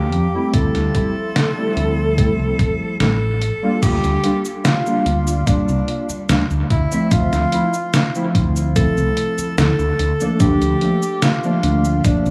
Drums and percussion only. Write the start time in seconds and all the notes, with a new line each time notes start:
0.12 closed hi-hat
0.54 kick, closed hi-hat
0.75 snare, closed hi-hat
0.95 kick, closed hi-hat
1.36 snare, closed hi-hat
1.77 closed hi-hat
2.18 kick, closed hi-hat
2.59 kick, closed hi-hat
3.00 snare, closed hi-hat
3.41 closed hi-hat
3.83 kick, closed hi-hat, crash, cabasa
4.04 closed hi-hat, cabasa
4.24 closed hi-hat
4.45 cabasa
4.65 snare, closed hi-hat, cabasa
4.86 cabasa
5.06 closed hi-hat
5.27 cabasa
5.47 kick, closed hi-hat, cabasa
5.69 cabasa
5.88 closed hi-hat
6.10 cabasa
6.29 snare, closed hi-hat, cabasa
6.51 cabasa
6.70 kick, closed hi-hat
6.92 cabasa
7.11 kick, closed hi-hat, cabasa
7.33 snare, closed hi-hat, cabasa
7.52 closed hi-hat
7.74 cabasa
7.94 snare, closed hi-hat, cabasa
8.15 cabasa
8.35 kick, closed hi-hat
8.56 cabasa
8.76 kick, closed hi-hat, cabasa
8.97 cabasa
9.17 closed hi-hat
9.38 cabasa
9.58 snare, closed hi-hat, cabasa
9.79 cabasa
9.99 closed hi-hat
10.21 cabasa
10.40 kick, closed hi-hat, cabasa
10.62 closed hi-hat, cabasa
10.81 closed hi-hat
11.03 cabasa
11.22 snare, closed hi-hat, cabasa
11.44 cabasa
11.63 closed hi-hat
11.85 cabasa
12.05 kick, closed hi-hat, cabasa
12.26 cabasa